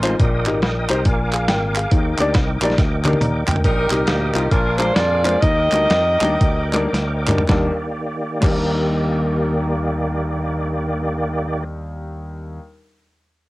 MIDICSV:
0, 0, Header, 1, 6, 480
1, 0, Start_track
1, 0, Key_signature, -3, "major"
1, 0, Tempo, 431344
1, 221, Time_signature, 4, 2, 24, 8
1, 5023, Tempo, 455581
1, 5983, Tempo, 490196
1, 6943, Tempo, 542495
1, 7903, Tempo, 576369
1, 12899, End_track
2, 0, Start_track
2, 0, Title_t, "Tonewheel organ"
2, 0, Program_c, 0, 16
2, 0, Note_on_c, 0, 70, 71
2, 0, Note_on_c, 0, 75, 63
2, 0, Note_on_c, 0, 80, 64
2, 0, Note_on_c, 0, 84, 79
2, 187, Note_off_c, 0, 75, 0
2, 203, Note_off_c, 0, 84, 0
2, 207, Note_on_c, 0, 87, 85
2, 210, Note_on_c, 0, 75, 64
2, 211, Note_off_c, 0, 80, 0
2, 214, Note_on_c, 0, 79, 62
2, 1158, Note_off_c, 0, 70, 0
2, 1161, Note_off_c, 0, 87, 0
2, 1163, Note_off_c, 0, 75, 0
2, 1165, Note_off_c, 0, 79, 0
2, 1175, Note_on_c, 0, 80, 66
2, 1180, Note_on_c, 0, 86, 73
2, 1181, Note_on_c, 0, 70, 73
2, 1182, Note_on_c, 0, 77, 65
2, 2124, Note_off_c, 0, 80, 0
2, 2128, Note_off_c, 0, 77, 0
2, 2141, Note_on_c, 0, 79, 67
2, 2142, Note_on_c, 0, 75, 67
2, 4023, Note_off_c, 0, 70, 0
2, 4023, Note_off_c, 0, 86, 0
2, 4034, Note_off_c, 0, 79, 0
2, 4035, Note_off_c, 0, 75, 0
2, 4056, Note_on_c, 0, 79, 61
2, 4059, Note_on_c, 0, 70, 67
2, 4059, Note_on_c, 0, 87, 83
2, 4060, Note_on_c, 0, 75, 63
2, 5014, Note_off_c, 0, 79, 0
2, 5015, Note_off_c, 0, 87, 0
2, 5016, Note_off_c, 0, 75, 0
2, 5023, Note_on_c, 0, 80, 65
2, 5026, Note_on_c, 0, 86, 78
2, 5027, Note_on_c, 0, 77, 65
2, 5972, Note_off_c, 0, 80, 0
2, 5974, Note_off_c, 0, 77, 0
2, 5979, Note_on_c, 0, 75, 68
2, 5979, Note_on_c, 0, 79, 61
2, 7870, Note_off_c, 0, 70, 0
2, 7877, Note_off_c, 0, 86, 0
2, 7881, Note_off_c, 0, 75, 0
2, 7882, Note_off_c, 0, 79, 0
2, 7898, Note_on_c, 0, 74, 73
2, 7901, Note_on_c, 0, 51, 64
2, 7902, Note_on_c, 0, 58, 73
2, 7902, Note_on_c, 0, 67, 67
2, 11359, Note_off_c, 0, 74, 0
2, 11361, Note_off_c, 0, 51, 0
2, 11362, Note_off_c, 0, 58, 0
2, 11363, Note_off_c, 0, 67, 0
2, 12899, End_track
3, 0, Start_track
3, 0, Title_t, "Saxophone section"
3, 0, Program_c, 1, 65
3, 0, Note_on_c, 1, 63, 65
3, 0, Note_on_c, 1, 65, 65
3, 176, Note_off_c, 1, 65, 0
3, 177, Note_off_c, 1, 63, 0
3, 4055, Note_on_c, 1, 70, 97
3, 4066, Note_on_c, 1, 67, 71
3, 4067, Note_on_c, 1, 63, 69
3, 4501, Note_off_c, 1, 70, 0
3, 4524, Note_off_c, 1, 67, 0
3, 4532, Note_off_c, 1, 63, 0
3, 4537, Note_on_c, 1, 67, 83
3, 4545, Note_on_c, 1, 63, 58
3, 4547, Note_on_c, 1, 58, 59
3, 4993, Note_off_c, 1, 63, 0
3, 4994, Note_off_c, 1, 58, 0
3, 5016, Note_on_c, 1, 70, 95
3, 5023, Note_off_c, 1, 67, 0
3, 5034, Note_on_c, 1, 65, 69
3, 5036, Note_on_c, 1, 62, 74
3, 5291, Note_off_c, 1, 70, 0
3, 5295, Note_on_c, 1, 72, 108
3, 5484, Note_off_c, 1, 72, 0
3, 5486, Note_on_c, 1, 74, 114
3, 5497, Note_off_c, 1, 65, 0
3, 5509, Note_on_c, 1, 65, 78
3, 5509, Note_on_c, 1, 68, 85
3, 5946, Note_off_c, 1, 62, 0
3, 5955, Note_off_c, 1, 65, 0
3, 5955, Note_off_c, 1, 68, 0
3, 5970, Note_on_c, 1, 75, 118
3, 5977, Note_off_c, 1, 74, 0
3, 5987, Note_on_c, 1, 67, 91
3, 5990, Note_on_c, 1, 70, 81
3, 7374, Note_off_c, 1, 67, 0
3, 7375, Note_off_c, 1, 70, 0
3, 7402, Note_off_c, 1, 75, 0
3, 12899, End_track
4, 0, Start_track
4, 0, Title_t, "Grand piano"
4, 0, Program_c, 2, 0
4, 30, Note_on_c, 2, 56, 84
4, 30, Note_on_c, 2, 60, 78
4, 32, Note_on_c, 2, 63, 87
4, 37, Note_on_c, 2, 65, 91
4, 37, Note_on_c, 2, 72, 106
4, 141, Note_off_c, 2, 56, 0
4, 141, Note_off_c, 2, 60, 0
4, 142, Note_off_c, 2, 63, 0
4, 144, Note_off_c, 2, 65, 0
4, 144, Note_off_c, 2, 72, 0
4, 220, Note_on_c, 2, 46, 88
4, 514, Note_on_c, 2, 63, 102
4, 518, Note_on_c, 2, 67, 82
4, 523, Note_on_c, 2, 70, 103
4, 622, Note_off_c, 2, 63, 0
4, 624, Note_off_c, 2, 67, 0
4, 626, Note_off_c, 2, 70, 0
4, 953, Note_off_c, 2, 46, 0
4, 993, Note_on_c, 2, 63, 91
4, 998, Note_on_c, 2, 67, 91
4, 1002, Note_on_c, 2, 72, 103
4, 1101, Note_off_c, 2, 63, 0
4, 1103, Note_off_c, 2, 67, 0
4, 1105, Note_off_c, 2, 72, 0
4, 1179, Note_on_c, 2, 46, 76
4, 1480, Note_on_c, 2, 77, 73
4, 1485, Note_on_c, 2, 68, 60
4, 1650, Note_off_c, 2, 77, 0
4, 1652, Note_off_c, 2, 68, 0
4, 1659, Note_on_c, 2, 79, 80
4, 1668, Note_on_c, 2, 70, 61
4, 1911, Note_off_c, 2, 46, 0
4, 1941, Note_off_c, 2, 79, 0
4, 1946, Note_off_c, 2, 70, 0
4, 1963, Note_on_c, 2, 77, 69
4, 1970, Note_on_c, 2, 68, 52
4, 2142, Note_on_c, 2, 51, 86
4, 2414, Note_off_c, 2, 77, 0
4, 2418, Note_off_c, 2, 68, 0
4, 2442, Note_on_c, 2, 58, 84
4, 2448, Note_on_c, 2, 63, 80
4, 2449, Note_on_c, 2, 62, 82
4, 2452, Note_on_c, 2, 67, 88
4, 2454, Note_on_c, 2, 74, 107
4, 2543, Note_off_c, 2, 58, 0
4, 2546, Note_off_c, 2, 62, 0
4, 2546, Note_off_c, 2, 63, 0
4, 2548, Note_off_c, 2, 67, 0
4, 2549, Note_off_c, 2, 74, 0
4, 2871, Note_off_c, 2, 51, 0
4, 2913, Note_on_c, 2, 58, 87
4, 2917, Note_on_c, 2, 62, 76
4, 2920, Note_on_c, 2, 63, 75
4, 2921, Note_on_c, 2, 67, 86
4, 2925, Note_on_c, 2, 74, 99
4, 3018, Note_off_c, 2, 58, 0
4, 3020, Note_off_c, 2, 62, 0
4, 3021, Note_off_c, 2, 63, 0
4, 3022, Note_off_c, 2, 67, 0
4, 3024, Note_off_c, 2, 74, 0
4, 3391, Note_on_c, 2, 58, 94
4, 3396, Note_on_c, 2, 62, 85
4, 3397, Note_on_c, 2, 63, 81
4, 3401, Note_on_c, 2, 67, 83
4, 3406, Note_on_c, 2, 70, 101
4, 3496, Note_off_c, 2, 58, 0
4, 3498, Note_off_c, 2, 62, 0
4, 3499, Note_off_c, 2, 63, 0
4, 3501, Note_off_c, 2, 67, 0
4, 3504, Note_off_c, 2, 70, 0
4, 3570, Note_on_c, 2, 82, 71
4, 3575, Note_on_c, 2, 74, 56
4, 3855, Note_off_c, 2, 82, 0
4, 3857, Note_off_c, 2, 74, 0
4, 3866, Note_on_c, 2, 79, 68
4, 3871, Note_on_c, 2, 70, 56
4, 4061, Note_on_c, 2, 46, 74
4, 4324, Note_off_c, 2, 79, 0
4, 4327, Note_off_c, 2, 70, 0
4, 4341, Note_on_c, 2, 58, 71
4, 4350, Note_on_c, 2, 63, 74
4, 4354, Note_on_c, 2, 67, 79
4, 4452, Note_off_c, 2, 58, 0
4, 4456, Note_off_c, 2, 63, 0
4, 4458, Note_off_c, 2, 67, 0
4, 4796, Note_off_c, 2, 46, 0
4, 4833, Note_on_c, 2, 58, 74
4, 4840, Note_on_c, 2, 63, 69
4, 4843, Note_on_c, 2, 65, 81
4, 4942, Note_off_c, 2, 58, 0
4, 4945, Note_off_c, 2, 63, 0
4, 4947, Note_off_c, 2, 65, 0
4, 5022, Note_on_c, 2, 46, 66
4, 5306, Note_on_c, 2, 56, 77
4, 5309, Note_on_c, 2, 58, 78
4, 5311, Note_on_c, 2, 62, 71
4, 5312, Note_on_c, 2, 65, 76
4, 5314, Note_on_c, 2, 70, 87
4, 5414, Note_off_c, 2, 56, 0
4, 5416, Note_off_c, 2, 58, 0
4, 5417, Note_off_c, 2, 62, 0
4, 5417, Note_off_c, 2, 65, 0
4, 5418, Note_off_c, 2, 70, 0
4, 5754, Note_off_c, 2, 46, 0
4, 5787, Note_on_c, 2, 56, 74
4, 5791, Note_on_c, 2, 58, 69
4, 5791, Note_on_c, 2, 62, 75
4, 5793, Note_on_c, 2, 65, 66
4, 5799, Note_on_c, 2, 72, 83
4, 5899, Note_off_c, 2, 56, 0
4, 5901, Note_off_c, 2, 58, 0
4, 5901, Note_off_c, 2, 62, 0
4, 5901, Note_off_c, 2, 65, 0
4, 5905, Note_off_c, 2, 72, 0
4, 5982, Note_on_c, 2, 51, 69
4, 6270, Note_on_c, 2, 55, 78
4, 6272, Note_on_c, 2, 58, 72
4, 6274, Note_on_c, 2, 62, 69
4, 6277, Note_on_c, 2, 63, 76
4, 6277, Note_on_c, 2, 70, 86
4, 6374, Note_off_c, 2, 55, 0
4, 6375, Note_off_c, 2, 58, 0
4, 6376, Note_off_c, 2, 62, 0
4, 6378, Note_off_c, 2, 63, 0
4, 6378, Note_off_c, 2, 70, 0
4, 6715, Note_off_c, 2, 51, 0
4, 6753, Note_on_c, 2, 55, 93
4, 6757, Note_on_c, 2, 58, 86
4, 6759, Note_on_c, 2, 63, 80
4, 6760, Note_on_c, 2, 62, 90
4, 6764, Note_on_c, 2, 70, 91
4, 6862, Note_off_c, 2, 55, 0
4, 6863, Note_off_c, 2, 58, 0
4, 6865, Note_off_c, 2, 62, 0
4, 6865, Note_off_c, 2, 63, 0
4, 6867, Note_off_c, 2, 70, 0
4, 7227, Note_on_c, 2, 55, 88
4, 7228, Note_on_c, 2, 58, 90
4, 7232, Note_on_c, 2, 62, 89
4, 7234, Note_on_c, 2, 63, 90
4, 7238, Note_on_c, 2, 70, 109
4, 7331, Note_off_c, 2, 55, 0
4, 7331, Note_off_c, 2, 58, 0
4, 7333, Note_off_c, 2, 62, 0
4, 7335, Note_off_c, 2, 63, 0
4, 7336, Note_off_c, 2, 70, 0
4, 7712, Note_on_c, 2, 55, 96
4, 7713, Note_on_c, 2, 58, 80
4, 7716, Note_on_c, 2, 62, 78
4, 7718, Note_on_c, 2, 63, 81
4, 7722, Note_on_c, 2, 70, 89
4, 7821, Note_off_c, 2, 55, 0
4, 7821, Note_off_c, 2, 58, 0
4, 7823, Note_off_c, 2, 62, 0
4, 7824, Note_off_c, 2, 63, 0
4, 7826, Note_off_c, 2, 70, 0
4, 7885, Note_on_c, 2, 55, 85
4, 7897, Note_on_c, 2, 62, 84
4, 7903, Note_on_c, 2, 39, 92
4, 7911, Note_on_c, 2, 63, 80
4, 7920, Note_on_c, 2, 70, 93
4, 8060, Note_off_c, 2, 55, 0
4, 8066, Note_off_c, 2, 62, 0
4, 8069, Note_off_c, 2, 39, 0
4, 8073, Note_off_c, 2, 63, 0
4, 8078, Note_off_c, 2, 70, 0
4, 8663, Note_on_c, 2, 55, 88
4, 8673, Note_on_c, 2, 62, 74
4, 8679, Note_on_c, 2, 39, 78
4, 8684, Note_on_c, 2, 63, 81
4, 8696, Note_on_c, 2, 70, 93
4, 12124, Note_off_c, 2, 55, 0
4, 12133, Note_off_c, 2, 62, 0
4, 12139, Note_off_c, 2, 39, 0
4, 12144, Note_off_c, 2, 63, 0
4, 12157, Note_off_c, 2, 70, 0
4, 12899, End_track
5, 0, Start_track
5, 0, Title_t, "Fingered electric bass"
5, 0, Program_c, 3, 33
5, 0, Note_on_c, 3, 33, 100
5, 148, Note_off_c, 3, 33, 0
5, 218, Note_on_c, 3, 34, 119
5, 513, Note_off_c, 3, 34, 0
5, 513, Note_on_c, 3, 32, 97
5, 696, Note_off_c, 3, 32, 0
5, 696, Note_on_c, 3, 34, 111
5, 951, Note_off_c, 3, 34, 0
5, 999, Note_on_c, 3, 36, 103
5, 1152, Note_off_c, 3, 36, 0
5, 1176, Note_on_c, 3, 34, 107
5, 1652, Note_off_c, 3, 34, 0
5, 1652, Note_on_c, 3, 32, 109
5, 2061, Note_off_c, 3, 32, 0
5, 2136, Note_on_c, 3, 39, 121
5, 2390, Note_off_c, 3, 39, 0
5, 2432, Note_on_c, 3, 38, 82
5, 2586, Note_off_c, 3, 38, 0
5, 2616, Note_on_c, 3, 36, 103
5, 2869, Note_off_c, 3, 36, 0
5, 2908, Note_on_c, 3, 34, 95
5, 3063, Note_off_c, 3, 34, 0
5, 3096, Note_on_c, 3, 38, 113
5, 3502, Note_off_c, 3, 38, 0
5, 3569, Note_on_c, 3, 39, 96
5, 3824, Note_off_c, 3, 39, 0
5, 3867, Note_on_c, 3, 38, 82
5, 4022, Note_off_c, 3, 38, 0
5, 4055, Note_on_c, 3, 34, 112
5, 4308, Note_off_c, 3, 34, 0
5, 4349, Note_on_c, 3, 36, 98
5, 4504, Note_off_c, 3, 36, 0
5, 4533, Note_on_c, 3, 38, 117
5, 4790, Note_off_c, 3, 38, 0
5, 4831, Note_on_c, 3, 36, 103
5, 4990, Note_off_c, 3, 36, 0
5, 5026, Note_on_c, 3, 34, 120
5, 5426, Note_off_c, 3, 34, 0
5, 5493, Note_on_c, 3, 41, 91
5, 5908, Note_off_c, 3, 41, 0
5, 5985, Note_on_c, 3, 39, 127
5, 6230, Note_off_c, 3, 39, 0
5, 6273, Note_on_c, 3, 38, 88
5, 6425, Note_off_c, 3, 38, 0
5, 6449, Note_on_c, 3, 41, 98
5, 6707, Note_off_c, 3, 41, 0
5, 6751, Note_on_c, 3, 39, 94
5, 6911, Note_off_c, 3, 39, 0
5, 6945, Note_on_c, 3, 38, 94
5, 7339, Note_off_c, 3, 38, 0
5, 7407, Note_on_c, 3, 38, 89
5, 7827, Note_off_c, 3, 38, 0
5, 7905, Note_on_c, 3, 39, 103
5, 8070, Note_off_c, 3, 39, 0
5, 8684, Note_on_c, 3, 39, 103
5, 12144, Note_off_c, 3, 39, 0
5, 12899, End_track
6, 0, Start_track
6, 0, Title_t, "Drums"
6, 41, Note_on_c, 9, 39, 105
6, 46, Note_on_c, 9, 42, 79
6, 152, Note_off_c, 9, 39, 0
6, 157, Note_off_c, 9, 42, 0
6, 217, Note_on_c, 9, 42, 92
6, 218, Note_on_c, 9, 36, 126
6, 328, Note_off_c, 9, 42, 0
6, 329, Note_off_c, 9, 36, 0
6, 510, Note_on_c, 9, 42, 89
6, 513, Note_on_c, 9, 39, 115
6, 621, Note_off_c, 9, 42, 0
6, 624, Note_off_c, 9, 39, 0
6, 692, Note_on_c, 9, 42, 85
6, 699, Note_on_c, 9, 38, 127
6, 803, Note_off_c, 9, 42, 0
6, 811, Note_off_c, 9, 38, 0
6, 997, Note_on_c, 9, 39, 104
6, 1000, Note_on_c, 9, 42, 69
6, 1108, Note_off_c, 9, 39, 0
6, 1111, Note_off_c, 9, 42, 0
6, 1171, Note_on_c, 9, 42, 94
6, 1176, Note_on_c, 9, 36, 120
6, 1282, Note_off_c, 9, 42, 0
6, 1287, Note_off_c, 9, 36, 0
6, 1466, Note_on_c, 9, 42, 71
6, 1481, Note_on_c, 9, 39, 110
6, 1577, Note_off_c, 9, 42, 0
6, 1592, Note_off_c, 9, 39, 0
6, 1650, Note_on_c, 9, 38, 127
6, 1653, Note_on_c, 9, 42, 103
6, 1762, Note_off_c, 9, 38, 0
6, 1764, Note_off_c, 9, 42, 0
6, 1956, Note_on_c, 9, 39, 102
6, 1956, Note_on_c, 9, 42, 79
6, 2067, Note_off_c, 9, 39, 0
6, 2068, Note_off_c, 9, 42, 0
6, 2131, Note_on_c, 9, 42, 92
6, 2135, Note_on_c, 9, 36, 119
6, 2242, Note_off_c, 9, 42, 0
6, 2246, Note_off_c, 9, 36, 0
6, 2423, Note_on_c, 9, 42, 89
6, 2429, Note_on_c, 9, 39, 102
6, 2534, Note_off_c, 9, 42, 0
6, 2541, Note_off_c, 9, 39, 0
6, 2605, Note_on_c, 9, 42, 85
6, 2613, Note_on_c, 9, 38, 127
6, 2618, Note_on_c, 9, 36, 111
6, 2716, Note_off_c, 9, 42, 0
6, 2724, Note_off_c, 9, 38, 0
6, 2729, Note_off_c, 9, 36, 0
6, 2914, Note_on_c, 9, 39, 109
6, 2919, Note_on_c, 9, 42, 69
6, 3006, Note_on_c, 9, 38, 37
6, 3025, Note_off_c, 9, 39, 0
6, 3030, Note_off_c, 9, 42, 0
6, 3096, Note_off_c, 9, 38, 0
6, 3096, Note_on_c, 9, 38, 71
6, 3096, Note_on_c, 9, 42, 91
6, 3098, Note_on_c, 9, 36, 116
6, 3207, Note_off_c, 9, 42, 0
6, 3208, Note_off_c, 9, 38, 0
6, 3209, Note_off_c, 9, 36, 0
6, 3390, Note_on_c, 9, 42, 67
6, 3391, Note_on_c, 9, 39, 106
6, 3395, Note_on_c, 9, 48, 84
6, 3487, Note_off_c, 9, 48, 0
6, 3487, Note_on_c, 9, 48, 79
6, 3502, Note_off_c, 9, 39, 0
6, 3502, Note_off_c, 9, 42, 0
6, 3576, Note_on_c, 9, 47, 100
6, 3581, Note_on_c, 9, 42, 99
6, 3598, Note_off_c, 9, 48, 0
6, 3687, Note_off_c, 9, 47, 0
6, 3692, Note_off_c, 9, 42, 0
6, 3870, Note_on_c, 9, 39, 102
6, 3875, Note_on_c, 9, 43, 123
6, 3879, Note_on_c, 9, 42, 82
6, 3962, Note_off_c, 9, 43, 0
6, 3962, Note_on_c, 9, 43, 96
6, 3981, Note_off_c, 9, 39, 0
6, 3991, Note_off_c, 9, 42, 0
6, 4055, Note_on_c, 9, 36, 125
6, 4055, Note_on_c, 9, 42, 106
6, 4073, Note_off_c, 9, 43, 0
6, 4166, Note_off_c, 9, 36, 0
6, 4167, Note_off_c, 9, 42, 0
6, 4345, Note_on_c, 9, 39, 106
6, 4346, Note_on_c, 9, 42, 85
6, 4456, Note_off_c, 9, 39, 0
6, 4457, Note_off_c, 9, 42, 0
6, 4531, Note_on_c, 9, 42, 83
6, 4539, Note_on_c, 9, 38, 118
6, 4643, Note_off_c, 9, 42, 0
6, 4650, Note_off_c, 9, 38, 0
6, 4838, Note_on_c, 9, 39, 102
6, 4846, Note_on_c, 9, 42, 72
6, 4949, Note_off_c, 9, 39, 0
6, 4958, Note_off_c, 9, 42, 0
6, 5025, Note_on_c, 9, 42, 88
6, 5026, Note_on_c, 9, 36, 117
6, 5130, Note_off_c, 9, 42, 0
6, 5132, Note_off_c, 9, 36, 0
6, 5311, Note_on_c, 9, 42, 70
6, 5316, Note_on_c, 9, 39, 104
6, 5417, Note_off_c, 9, 42, 0
6, 5421, Note_off_c, 9, 39, 0
6, 5494, Note_on_c, 9, 38, 127
6, 5496, Note_on_c, 9, 42, 104
6, 5599, Note_off_c, 9, 38, 0
6, 5602, Note_off_c, 9, 42, 0
6, 5800, Note_on_c, 9, 42, 78
6, 5802, Note_on_c, 9, 39, 108
6, 5905, Note_off_c, 9, 42, 0
6, 5908, Note_off_c, 9, 39, 0
6, 5983, Note_on_c, 9, 42, 101
6, 5984, Note_on_c, 9, 36, 125
6, 6081, Note_off_c, 9, 42, 0
6, 6082, Note_off_c, 9, 36, 0
6, 6266, Note_on_c, 9, 42, 86
6, 6271, Note_on_c, 9, 39, 108
6, 6364, Note_off_c, 9, 42, 0
6, 6369, Note_off_c, 9, 39, 0
6, 6448, Note_on_c, 9, 42, 89
6, 6455, Note_on_c, 9, 38, 123
6, 6546, Note_off_c, 9, 42, 0
6, 6553, Note_off_c, 9, 38, 0
6, 6752, Note_on_c, 9, 39, 104
6, 6764, Note_on_c, 9, 42, 68
6, 6850, Note_off_c, 9, 39, 0
6, 6862, Note_off_c, 9, 42, 0
6, 6945, Note_on_c, 9, 42, 92
6, 6947, Note_on_c, 9, 36, 113
6, 7033, Note_off_c, 9, 42, 0
6, 7036, Note_off_c, 9, 36, 0
6, 7231, Note_on_c, 9, 39, 110
6, 7233, Note_on_c, 9, 42, 73
6, 7320, Note_off_c, 9, 39, 0
6, 7321, Note_off_c, 9, 42, 0
6, 7417, Note_on_c, 9, 38, 66
6, 7420, Note_on_c, 9, 42, 91
6, 7505, Note_off_c, 9, 38, 0
6, 7509, Note_off_c, 9, 42, 0
6, 7711, Note_on_c, 9, 39, 107
6, 7718, Note_on_c, 9, 45, 103
6, 7722, Note_on_c, 9, 42, 82
6, 7800, Note_off_c, 9, 39, 0
6, 7806, Note_off_c, 9, 45, 0
6, 7807, Note_on_c, 9, 43, 106
6, 7810, Note_off_c, 9, 42, 0
6, 7896, Note_off_c, 9, 43, 0
6, 7897, Note_on_c, 9, 39, 86
6, 7903, Note_on_c, 9, 38, 93
6, 7905, Note_on_c, 9, 36, 100
6, 7981, Note_off_c, 9, 39, 0
6, 7986, Note_off_c, 9, 38, 0
6, 7988, Note_off_c, 9, 36, 0
6, 8682, Note_on_c, 9, 36, 118
6, 8682, Note_on_c, 9, 39, 89
6, 8684, Note_on_c, 9, 49, 85
6, 8765, Note_off_c, 9, 39, 0
6, 8766, Note_off_c, 9, 36, 0
6, 8767, Note_off_c, 9, 49, 0
6, 12899, End_track
0, 0, End_of_file